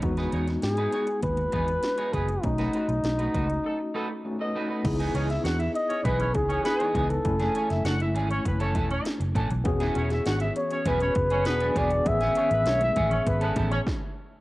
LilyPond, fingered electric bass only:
\new Staff \with { instrumentName = "Fingered electric bass" } { \clef bass \time 4/4 \key e \major \tempo 4 = 100 e,8 e,8 gis,8 r8 dis,8 e,8 r8 fis,,8 | b,,8 r16 b,,16 b,,8 cis,8 r2 | cis,8 cis,8 e,8 r8 b,,8 cis,8 r8 cis,8 | fis,,8 r16 fis,,16 fis,,8 gis,,8 fis,,8 e,,8 r16 fis,,16 a,,16 b,,16 |
e,,8 e,,8 gis,,8 r8 e,,8 fis,,8 e,,8 e,,8 | a,,8 r16 a,,16 b,,8 a,,8 gis,,8 a,,8 r4 | }